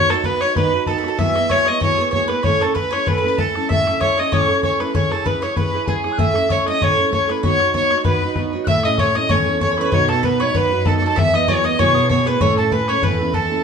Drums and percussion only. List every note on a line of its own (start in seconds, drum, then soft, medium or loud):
0.10 bodhran medium
0.17 bodhran soft
0.24 bodhran medium
0.41 bodhran medium
0.56 bodhran medium
0.86 bodhran medium
1.04 bodhran soft
1.19 bodhran medium
1.36 bodhran medium
1.42 bodhran soft
1.50 bodhran medium
1.67 bodhran soft
1.81 bodhran medium
2.13 bodhran medium
2.29 bodhran medium
2.44 bodhran medium
2.61 bodhran medium
2.68 bodhran soft
2.76 bodhran medium
2.93 bodhran medium
3.07 bodhran medium
3.38 bodhran medium
3.55 bodhran medium
3.70 bodhran medium
3.87 bodhran medium
3.95 bodhran soft
4.01 bodhran medium
4.32 bodhran medium
4.63 bodhran medium
4.80 bodhran medium
4.95 bodhran medium
5.12 bodhran soft
5.19 bodhran soft
5.26 bodhran medium
5.43 bodhran medium
5.57 bodhran medium
5.87 bodhran medium
6.04 bodhran medium
6.18 bodhran medium
6.35 bodhran medium
6.42 bodhran soft
6.50 bodhran medium
6.67 bodhran medium
6.82 bodhran medium
7.13 bodhran medium
7.29 bodhran medium
7.43 bodhran medium
7.60 bodhran medium
7.67 bodhran soft
7.74 bodhran medium
7.91 bodhran medium
7.98 bodhran soft
8.05 bodhran medium
8.36 bodhran medium
8.67 bodhran medium
8.83 bodhran medium
8.98 bodhran medium
9.15 bodhran medium
9.29 bodhran medium
9.61 bodhran medium
9.78 bodhran medium
9.92 bodhran medium
10.09 bodhran medium
10.16 bodhran soft
10.23 bodhran medium
10.41 bodhran medium
10.55 bodhran medium
10.86 bodhran medium
11.02 bodhran medium
11.17 bodhran medium
11.34 bodhran medium
11.41 bodhran soft
11.48 bodhran medium
11.65 bodhran medium
11.79 bodhran medium
12.10 bodhran medium
12.26 bodhran medium
12.41 bodhran medium
12.57 bodhran medium
12.64 bodhran soft
12.71 bodhran medium
12.88 bodhran medium
13.03 bodhran medium
13.34 bodhran medium